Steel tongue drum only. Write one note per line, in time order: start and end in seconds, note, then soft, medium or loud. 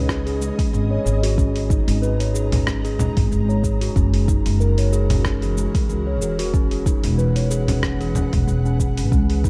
0.09 0.25 C#4 loud
0.26 0.40 G#4 loud
0.41 0.57 G#3 medium
0.58 0.72 G#3 medium
0.73 0.89 G#4 medium
0.91 1.05 C#5 medium
1.05 1.22 G#4 medium
1.23 1.36 F#4 loud
1.38 1.54 C#4 loud
1.55 1.69 G#4 medium
1.70 1.87 D#4 loud
1.87 2.01 G#3 medium
2.02 2.18 B4 loud
2.20 2.34 C#5 medium
2.34 2.51 G#4 loud
2.52 2.65 C#4 medium
2.66 2.83 C#4 medium
2.84 2.98 G#4 loud
2.99 3.15 G#3 medium
3.17 3.31 G#3 medium
3.31 3.47 G#4 medium
3.49 3.63 C#5 medium
3.64 3.80 G#4 medium
3.81 3.94 F#4 loud
3.96 4.12 C#4 loud
4.13 4.27 G#4 medium
4.28 4.45 D#4 loud
4.46 4.60 G#3 medium
4.60 4.76 A#4 loud
4.78 4.92 C#5 medium
4.93 5.09 G#4 loud
5.11 5.24 C#4 medium
5.25 5.41 C#4 medium
5.43 5.57 G#4 loud
5.57 5.73 G#3 medium
5.75 5.89 G#3 medium
5.89 6.05 G#4 medium
6.07 6.21 C#5 medium
6.21 6.38 G#4 loud
6.39 6.52 F#4 loud
6.54 6.70 C#4 loud
6.72 6.85 G#4 medium
6.86 7.03 D#4 loud
7.04 7.18 G#3 medium
7.18 7.34 B4 loud
7.36 7.50 C#5 medium
7.51 7.67 G#4 loud
7.68 7.81 C#4 medium
7.83 7.99 C#4 medium
8.01 8.14 G#4 loud
8.15 8.25 C#4 medium
8.33 8.46 G#3 medium
8.48 8.64 G#4 medium
8.65 8.79 C#4 medium
8.80 8.97 G#4 medium
8.97 9.11 C#4 medium
9.12 9.28 C#4 loud
9.30 9.44 G#4 medium
9.44 9.50 D#4 loud